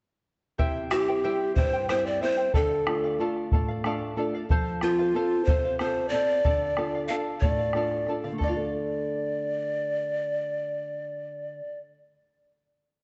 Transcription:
0.58 nylon-string guitar C3, charango E4 G4 C5 E5 G5, bombo low
0.91 nylon-string guitar G3 C4 E4, charango E4 C5 E5 G5, pan flute G4, bombo rim
1.08 charango E4 C5 G5
1.24 nylon-string guitar G3 C4 E4, charango E4 G4 C5 E5 G5
1.40 bombo rim
1.55 nylon-string guitar G2, charango E4 C5 E5 G5, pan flute C5, bombo low
1.73 charango E4 C5 G5
1.89 nylon-string guitar G3 C4 E4, charango E4 G4 C5 E5 G5, pan flute C5, bombo rim
2.06 pan flute D5
2.21 nylon-string guitar G3 C4 E4, charango E4 C5 E5 G5, pan flute C5
2.37 charango E4 C5 G5
2.54 nylon-string guitar D3, charango A4 D5 F5, pan flute A4, bombo low
2.86 nylon-string guitar A3 D4 F4, charango A4 D5 F5, bombo rim
3.04 charango D5 F5
3.18 nylon-string guitar A3 D4 F4, charango A4 D5 F5
3.36 bombo rim
3.52 nylon-string guitar A2, charango A4 D5 F5, bombo low
3.68 charango D5 F5
3.84 nylon-string guitar A3 D4 F4 F5, charango A4 D5 F5, bombo rim
4.16 nylon-string guitar A3 D4 F4 A4, charango A4 D5 F5
4.35 charango D5 F5
4.49 nylon-string guitar F3, charango A4 C5 F5, bombo low
4.81 nylon-string guitar C4 F4 A4, pan flute F4, charango A4 C5 F5, bombo rim
4.99 charango C5 F5
5.14 nylon-string guitar C4 F4 A4, charango A4 C5 F5
5.31 bombo rim
5.45 nylon-string guitar C3, charango A4, pan flute C5, bombo low
5.49 charango C5 F5
5.65 charango C5 F5
5.79 nylon-string guitar C4 F4 A4, charango A4 C5 F5, pan flute C5, bombo rim
6.09 nylon-string guitar C4 F4, pan flute D5
6.13 nylon-string guitar A4, charango A4 C5 F5
6.29 charango C5 F5
6.44 nylon-string guitar D3, charango A4 D5 F5, bombo rim, bombo low
6.77 nylon-string guitar D4 F4 A4, charango A4 D5 F5, bombo rim
6.95 charango D5 F5
7.08 nylon-string guitar D4 F4 A4, charango A4 D5 F5, pan flute F5
7.41 nylon-string guitar A2, charango A4 D5, pan flute D5, bombo rim, bombo low
7.45 charango F5
7.59 charango D5 F5
7.73 nylon-string guitar D4 F4 A4, charango A4 D5 F5, bombo rim
7.91 bombo rim
8.07 nylon-string guitar D4 F4 A4, charango A4 D5 F5, bombo rim
8.24 nylon-string guitar D3, charango D5 F5, bombo rim
8.32 nylon-string guitar A3
8.38 nylon-string guitar D4, charango A4, bombo low
8.43 pan flute D5, charango D5
8.48 nylon-string guitar F4, charango F5
8.57 nylon-string guitar A4

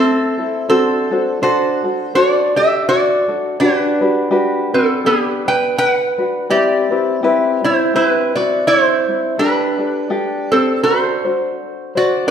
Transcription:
Already playing: ukulele C4 E4 A4, resonator guitar played with a steel bar C4 A4
0.37 ukulele C4 E4 A4
0.69 resonator guitar played with a steel bar C4 A4, ukulele D4 F#4 A4 C5
1.11 ukulele D4 F#4 A4 C5
1.42 ukulele D4 F#4 A4 C5, resonator guitar played with a steel bar F#4 C5
1.84 ukulele D4 F#4 A4
2.15 ukulele D4 F#4 A4 C5, resonator guitar played with a steel bar F#4 D5
2.56 ukulele D4 A4, resonator guitar played with a steel bar G4 E5
2.89 resonator guitar played with a steel bar F#4 D5
3.28 ukulele D4 F#4 A4
3.60 ukulele D4 F#4 G4 B4, resonator guitar played with a steel bar D4 B4
4.01 ukulele D4 F#4 G4 B4
4.31 ukulele D4 F#4 G4 B4
4.74 resonator guitar played with a steel bar C4 A4, ukulele D4 F#4 B4
5.05 resonator guitar played with a steel bar B3 G4, ukulele D4 G4 B4
5.46 ukulele D4 B4, resonator guitar played with a steel bar B4 G5
5.78 resonator guitar played with a steel bar B4 G5
5.89 resonator guitar played with a steel bar F#5
6.18 ukulele D4 F#4 B4
6.50 ukulele C4 E4 G4 B4, resonator guitar played with a steel bar G4 D5
6.91 ukulele C4 E4 G4 B4
7.23 ukulele C4 E4 G4 B4
7.63 ukulele C4 E4, resonator guitar played with a steel bar E4 C5
7.94 ukulele C4 E4 G4 B4, resonator guitar played with a steel bar E4 C5
8.07 resonator guitar played with a steel bar B4
8.35 ukulele C4 E4, resonator guitar played with a steel bar F#4 D5
8.67 resonator guitar played with a steel bar E4 C5
9.08 ukulele C4 E4
9.38 ukulele D4 G4 A4, resonator guitar played with a steel bar D4 B4
9.79 ukulele D4 G4 A4
10.10 ukulele D4 G4 A4
10.52 resonator guitar played with a steel bar C4 A4, ukulele D4 G4 C5
10.83 ukulele D4 F#4 A4 C5, resonator guitar played with a steel bar F#4 C5
11.25 ukulele D4 F#4 C5
11.95 ukulele D4 F#4 C5, resonator guitar played with a steel bar F#4 D5
12.27 ukulele D4 G4

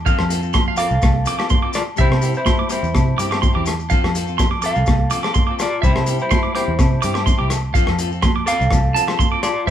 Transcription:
0.05 fingered electric bass F2, clean electric guitar F3 C4 F4 A4 F5, kick, muted conga, maracas
0.19 fingered electric bass F2, cross-stick, low agogo
0.29 clean electric guitar C4 F4 A4, closed hi-hat, muted conga, maracas
0.40 clean electric guitar C4 F4 A4, maracas
0.53 clean electric guitar C6, kick, cross-stick, high conga, low agogo, maracas
0.68 clean electric guitar F5
0.75 clean electric guitar F3 C4 F4 A4 F5 D6, maracas
0.79 closed hi-hat
0.90 fingered electric bass C2, maracas
1.02 fingered electric bass C2, kick, cross-stick, muted conga, high conga, low agogo, maracas
1.24 clean electric guitar F3 C4 F4 A4 D6, closed hi-hat, maracas
1.38 clean electric guitar C4 F4 A4 D6, cross-stick, low agogo, maracas
1.49 clean electric guitar C6, kick, high conga, maracas
1.62 clean electric guitar C4 F4 A4 D6
1.73 clean electric guitar F4 D5, cross-stick, closed hi-hat, muted conga, low agogo, maracas
1.96 fingered electric bass C2, clean electric guitar G3 C4 E4 G4 E5, kick, muted conga, maracas
2.00 clean electric guitar E4 C5
2.10 fingered electric bass C3, cross-stick, low agogo
2.21 clean electric guitar G3 C4 E4 G4, closed hi-hat, muted conga, maracas
2.34 clean electric guitar C4 E4 C5, maracas
2.46 clean electric guitar C6, kick, cross-stick, high conga, low agogo, maracas
2.59 clean electric guitar D6
2.68 clean electric guitar G3 C4 E4 G4 C5, muted clean electric guitar stroke, closed hi-hat, maracas
2.73 clean electric guitar E4
2.83 fingered electric bass E2, maracas
2.94 fingered electric bass C3, kick, cross-stick, muted conga, high conga, low agogo, maracas
3.16 fingered electric bass G2, clean electric guitar C4 E4 G4 D6, muted clean electric guitar stroke, closed hi-hat, maracas
3.29 clean electric guitar C4 G4 D6, cross-stick, low agogo, maracas
3.42 clean electric guitar C6, kick, high conga, maracas
3.53 fingered electric bass E2, clean electric guitar C4 E4 G4 D6
3.66 cross-stick, closed hi-hat, muted conga, low agogo, maracas
3.80 maracas
3.90 fingered electric bass F2, clean electric guitar C4 F4 A4 F5, muted clean electric guitar stroke, kick, muted conga, maracas
4.04 fingered electric bass F2, cross-stick, low agogo
4.13 clean electric guitar F3 C4 F4 A4, closed hi-hat, muted conga, maracas
4.26 clean electric guitar C4 F4 A4, maracas
4.38 clean electric guitar C6, kick, cross-stick, high conga, low agogo, maracas
4.51 clean electric guitar D6
4.61 clean electric guitar F3 C4 F4 A4 D6, closed hi-hat, maracas
4.66 clean electric guitar F5
4.76 fingered electric bass C2, maracas
4.86 fingered electric bass C2, kick, cross-stick, muted conga, high conga, low agogo, maracas
5.10 clean electric guitar F3 C4 F4 A4 D6, closed hi-hat, maracas
5.23 clean electric guitar C4 A4 D6, cross-stick, low agogo, maracas
5.34 clean electric guitar C6, kick, high conga, maracas
5.47 clean electric guitar F4 A4 D6
5.51 clean electric guitar C4
5.59 clean electric guitar F4 D5, cross-stick, closed hi-hat, muted conga, low agogo, maracas
5.82 fingered electric bass C2, clean electric guitar G3 C4 E4 G4 C5 E5, muted clean electric guitar stroke, kick, muted conga, maracas
5.96 fingered electric bass C3, cross-stick, low agogo
6.06 clean electric guitar G3 C4 E4 G4, closed hi-hat, muted conga, maracas
6.19 clean electric guitar C4 E4 G4 C5, maracas
6.31 clean electric guitar C6, kick, cross-stick, high conga, low agogo, maracas
6.43 clean electric guitar D6
6.54 clean electric guitar G3 C4 E4 G4 C5 D6, closed hi-hat
6.68 fingered electric bass E2
6.79 fingered electric bass C3, kick, cross-stick, muted conga, high conga, low agogo, maracas
7.02 fingered electric bass G2, clean electric guitar G3 C4 E4 G4 D6, closed hi-hat, maracas
7.14 clean electric guitar E4 G4 D6, cross-stick, low agogo, maracas
7.26 clean electric guitar C6, kick, high conga, maracas
7.38 fingered electric bass C2, clean electric guitar C4 E4 G4 D6
7.50 cross-stick, closed hi-hat, muted conga, low agogo, maracas
7.74 fingered electric bass F2, clean electric guitar F3 C4 F4 A4 F5, kick, muted conga, maracas
7.87 fingered electric bass F2, cross-stick, low agogo
7.97 clean electric guitar F3 C4 F4 A4, closed hi-hat, muted conga, maracas
8.11 clean electric guitar C4 A4, muted clean electric guitar stroke, maracas
8.22 clean electric guitar C6, kick, cross-stick, high conga, low agogo, maracas
8.36 clean electric guitar D6
8.46 clean electric guitar F3 C4 F4 A4 F5 D6, closed hi-hat, maracas
8.61 fingered electric bass C2, maracas
8.71 fingered electric bass C2, kick, cross-stick, muted conga, high conga, low agogo, maracas
8.94 clean electric guitar F3 C4 F4 A4 A5, closed hi-hat, maracas
9.07 clean electric guitar C4 F4 A4, muted clean electric guitar stroke, cross-stick, low agogo, maracas
9.19 clean electric guitar C6, kick, high conga, maracas
9.31 clean electric guitar C4 F4 A4 D6
9.43 clean electric guitar F4 D5, cross-stick, closed hi-hat, low agogo, maracas
9.66 clean electric guitar G3, muted clean electric guitar stroke

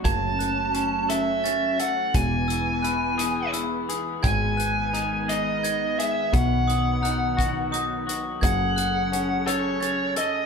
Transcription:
Already playing: string section F#3
0.04 picked electric bass F#1, clean electric guitar F#2, string section A3 C#4, lead electric guitar A5, glockenspiel G#6, kick, closed hi-hat
0.39 glockenspiel F#6, closed hi-hat
0.74 clean electric guitar C#4, closed hi-hat
1.09 clean electric guitar A4, lead electric guitar E5, closed hi-hat
1.44 clean electric guitar C#4, glockenspiel A6, closed hi-hat
1.80 clean electric guitar A4, lead electric guitar F#5, closed hi-hat
2.14 picked electric bass E1, clean electric guitar E2, string section E3 G#3 B3, lead electric guitar G#5, kick, closed hi-hat
2.48 glockenspiel E6, closed hi-hat
2.83 clean electric guitar E4, glockenspiel F#6, closed hi-hat
3.18 clean electric guitar G#4, closed hi-hat
3.53 clean electric guitar E4, glockenspiel E6, closed hi-hat
3.89 clean electric guitar G#4, closed hi-hat
4.23 picked electric bass G#1, clean electric guitar G#2, string section D#3, lead electric guitar G#5, glockenspiel G#6, kick, closed hi-hat
4.57 glockenspiel F#6, closed hi-hat
4.93 clean electric guitar D#4, closed hi-hat
5.28 clean electric guitar G#4, lead electric guitar D#5, closed hi-hat
5.63 glockenspiel G#6, closed hi-hat
5.99 clean electric guitar G#4, lead electric guitar E5, closed hi-hat
6.33 picked electric bass B1, clean electric guitar B2, string section D#3 F#3, lead electric guitar F#5, kick, closed hi-hat
6.67 glockenspiel D#6, closed hi-hat
7.02 clean electric guitar D#4, glockenspiel F#6, closed hi-hat
7.37 clean electric guitar F#4, kick, closed hi-hat
7.72 clean electric guitar D#4, glockenspiel D#6, closed hi-hat
8.07 clean electric guitar F#4, closed hi-hat
8.41 picked electric bass F#1, clean electric guitar F#2, string section C#3 A3, lead electric guitar F#5, glockenspiel G#6, kick, closed hi-hat
8.76 glockenspiel F#6, closed hi-hat
9.12 clean electric guitar C#4, closed hi-hat
9.47 clean electric guitar A4, lead electric guitar C#5, closed hi-hat
9.80 clean electric guitar C#4, glockenspiel A6, closed hi-hat
10.16 clean electric guitar A4, lead electric guitar D#5, closed hi-hat

